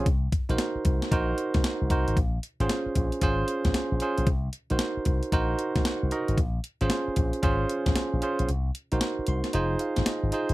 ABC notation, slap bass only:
X:1
M:4/4
L:1/16
Q:"Swing 16ths" 1/4=114
K:Bbm
V:1 name="Slap bass" clef=bass
C,,2 z B,,, z2 C,, z B,,,2 z C,, z C,, C,, A,,, | B,,,2 z A,,, z2 B,,, z A,,,2 z B,,, z B,,, z B,,, | C,,2 z B,,, z2 C,, z B,,,2 z C,, z C,, z A,,, | B,,,2 z A,,, z2 B,,, z A,,,2 z B,,, z B,,, z B,,, |
C,,2 z B,,, z2 C,, z F,,,2 z A,,, z A,,, z A,,, |]